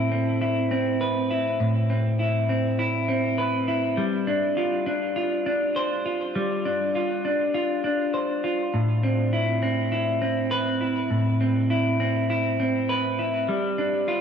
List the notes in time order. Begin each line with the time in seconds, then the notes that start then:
Already playing: A2 C4 E4 A4
0.12 C4
0.42 E4
0.71 C4
1.01 B4
1.31 E4
1.60 A2
1.90 C4
2.19 E4
2.49 C4
2.79 E4
3.08 C4
3.38 B4
3.68 E4
3.97 G3
4.27 D4
4.57 F4
4.86 D4
5.16 F4
5.46 D4
5.76 C5
6.05 F4
6.35 G3
6.65 D4
6.95 F4
7.25 D4
7.54 F4
7.84 D4
8.14 C5
8.44 F4
8.74 A2
9.03 C4
9.33 E4
9.63 C4
9.92 E4
10.22 C4
10.51 B4
10.81 E4
11.11 A2
11.41 C4
11.70 E4
12.00 C4
12.30 E4
12.60 C4
12.89 B4
13.19 E4
13.49 G3
13.78 D4
14.08 F4